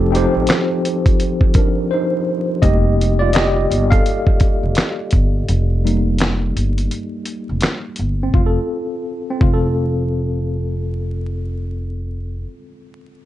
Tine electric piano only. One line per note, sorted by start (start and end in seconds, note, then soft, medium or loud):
0.00 0.11 F3 medium
0.00 0.12 C4 medium
0.00 0.14 D#4 medium
0.00 0.15 G4 medium
0.00 2.64 A4 loud
0.11 1.09 F3 medium
0.11 1.10 C4 medium
0.11 1.11 D#4 medium
0.15 1.11 G4 medium
0.15 1.12 C5 loud
1.55 1.90 D4 medium
1.55 1.92 A#4 medium
1.91 2.59 D#4 medium
1.91 2.64 C5 medium
2.62 5.44 G3 medium
2.62 5.45 A#3 soft
2.62 5.45 D#4 medium
2.62 3.16 G4 medium
2.62 3.21 D#5 medium
3.19 3.34 F4 medium
3.19 3.34 D5 medium
3.34 3.88 G4 medium
3.34 3.92 D#5 medium
3.90 7.59 A4 medium
3.90 7.58 F5 medium
5.84 6.87 G3 medium
5.84 6.87 A#3 soft
5.84 6.88 D#4 medium
8.23 8.51 C4 medium
8.35 8.57 F4 medium
8.46 8.63 A4 medium
9.30 12.33 C4 medium
9.42 12.44 F4 medium
9.53 12.56 A4 medium